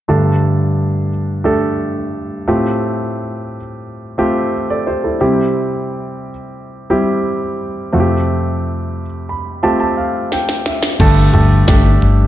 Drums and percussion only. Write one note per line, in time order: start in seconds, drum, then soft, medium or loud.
10.32 snare soft
10.49 snare soft
10.66 snare medium
10.83 snare medium
11.00 kick loud
11.00 closed hi-hat medium
11.00 crash loud
11.34 closed hi-hat medium
11.34 floor tom medium
11.68 kick loud
11.68 snare loud
11.68 closed hi-hat medium
12.02 closed hi-hat medium